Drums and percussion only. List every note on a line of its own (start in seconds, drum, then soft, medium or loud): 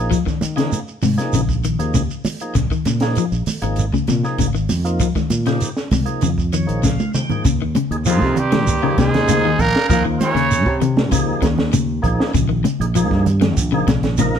0.11 kick medium
0.11 closed hi-hat medium
0.11 shekere medium
0.27 kick medium
0.27 snare soft
0.27 shekere soft
0.41 closed hi-hat medium
0.41 high conga medium
0.41 shekere medium
0.58 snare medium
0.58 closed hi-hat medium
0.58 shekere soft
0.72 closed hi-hat medium
0.72 high conga medium
0.72 shekere medium
0.88 shekere soft
1.02 open hi-hat medium
1.02 high conga medium
1.02 low conga medium
1.02 shekere medium
1.18 snare soft
1.18 closed hi-hat medium
1.18 shekere soft
1.33 closed hi-hat medium
1.33 shekere loud
1.49 kick medium
1.49 shekere soft
1.64 closed hi-hat medium
1.64 shekere medium
1.80 closed hi-hat soft
1.80 shekere soft
1.94 kick medium
1.94 closed hi-hat medium
1.94 high conga medium
1.94 shekere loud
2.10 shekere soft
2.25 open hi-hat medium
2.25 high conga medium
2.25 low conga medium
2.25 shekere medium
2.40 closed hi-hat medium
2.40 shekere soft
2.55 kick medium
2.55 snare soft
2.55 closed hi-hat medium
2.55 shekere medium
2.71 kick medium
2.71 shekere soft
2.85 snare soft
2.85 closed hi-hat medium
2.85 high conga medium
2.85 shekere medium
3.00 snare medium
3.00 closed hi-hat medium
3.00 shekere soft
3.15 closed hi-hat medium
3.15 shekere medium
3.32 shekere soft
3.46 open hi-hat medium
3.46 high conga medium
3.46 low conga medium
3.46 shekere medium
3.62 closed hi-hat medium
3.62 shekere soft
3.76 closed hi-hat medium
3.76 low conga medium
3.76 shekere medium
3.93 kick medium
3.93 high conga medium
3.93 shekere soft
4.07 snare soft
4.07 closed hi-hat soft
4.07 low conga medium
4.07 shekere medium
4.23 snare soft
4.23 shekere soft
4.38 kick medium
4.38 closed hi-hat medium
4.38 high conga medium
4.38 shekere medium
4.55 shekere soft
4.69 open hi-hat medium
4.69 high conga medium
4.69 low conga medium
4.69 shekere medium
4.85 closed hi-hat soft
4.85 shekere soft
5.00 kick loud
5.00 closed hi-hat medium
5.00 shekere medium
5.15 kick medium
5.15 snare soft
5.15 high conga medium
5.15 shekere soft
5.30 closed hi-hat medium
5.30 high conga medium
5.30 shekere medium
5.46 snare medium
5.46 closed hi-hat soft
5.46 shekere soft
5.60 closed hi-hat medium
5.60 shekere medium
5.77 snare medium
5.77 shekere soft
5.91 kick medium
5.91 snare soft
5.91 open hi-hat medium
5.91 high conga medium
5.91 low conga medium
5.91 shekere medium
6.06 closed hi-hat medium
6.06 shekere soft
6.21 closed hi-hat medium
6.21 low conga medium
6.21 shekere medium
6.38 kick medium
6.38 shekere soft
6.53 closed hi-hat soft
6.53 low conga medium
6.53 shekere medium
6.69 closed hi-hat soft
6.69 shekere soft
6.84 kick medium
6.84 snare soft
6.84 high conga medium
6.84 shekere loud
7.00 high tom medium
7.00 high conga loud
7.00 shekere soft
7.15 mid tom medium
7.15 low conga medium
7.15 shekere medium
7.30 floor tom medium
7.30 low conga medium
7.30 shekere soft
7.45 kick loud
7.45 closed hi-hat medium
7.45 high conga soft
7.45 shekere medium
7.75 closed hi-hat medium
7.75 high conga loud
7.75 shekere soft
7.92 closed hi-hat medium
8.05 closed hi-hat medium
8.05 high conga soft
8.05 shekere medium
8.22 kick medium
8.22 snare soft
8.36 closed hi-hat medium
8.36 low conga medium
8.36 shekere soft
8.52 snare medium
8.52 closed hi-hat medium
8.52 high conga medium
8.67 kick medium
8.67 closed hi-hat medium
8.67 high conga soft
8.67 shekere loud
8.98 kick medium
8.98 snare medium
8.98 closed hi-hat soft
8.98 high conga loud
8.98 shekere soft
9.14 snare medium
9.14 closed hi-hat soft
9.14 low conga medium
9.28 closed hi-hat medium
9.28 high conga medium
9.28 shekere loud
9.59 kick medium
9.59 closed hi-hat soft
9.59 low conga medium
9.59 shekere soft
9.76 snare medium
9.89 kick loud
9.89 closed hi-hat medium
9.89 high conga soft
9.89 shekere medium
10.21 snare soft
10.21 closed hi-hat medium
10.21 high conga loud
10.21 shekere soft
10.37 snare soft
10.37 closed hi-hat medium
10.51 closed hi-hat medium
10.51 high conga soft
10.51 shekere medium
10.66 kick medium
10.81 closed hi-hat medium
10.81 low conga medium
10.81 shekere soft
10.97 snare medium
10.97 high conga medium
11.11 kick medium
11.11 closed hi-hat medium
11.11 high conga soft
11.11 shekere loud
11.42 kick medium
11.42 snare medium
11.42 closed hi-hat medium
11.42 high conga loud
11.42 shekere soft
11.58 snare medium
11.58 low conga medium
11.73 closed hi-hat medium
11.73 high conga medium
11.73 shekere loud
12.04 kick medium
12.04 closed hi-hat medium
12.04 low conga medium
12.04 shekere soft
12.20 snare medium
12.34 kick medium
12.34 closed hi-hat medium
12.34 high conga soft
12.34 shekere medium
12.65 closed hi-hat medium
12.65 high conga loud
12.65 shekere soft
12.81 closed hi-hat medium
12.95 closed hi-hat medium
12.95 shekere medium
13.11 kick medium
13.11 snare soft
13.26 closed hi-hat medium
13.26 low conga medium
13.26 shekere soft
13.41 snare medium
13.41 closed hi-hat medium
13.41 high conga medium
13.57 kick medium
13.57 closed hi-hat medium
13.57 shekere loud
13.88 kick medium
13.88 snare medium
13.88 closed hi-hat medium
13.88 high conga loud
13.88 shekere soft
14.03 snare medium
14.03 closed hi-hat soft
14.03 low conga medium
14.18 snare soft
14.18 closed hi-hat medium
14.18 high conga medium
14.18 shekere loud
14.34 snare soft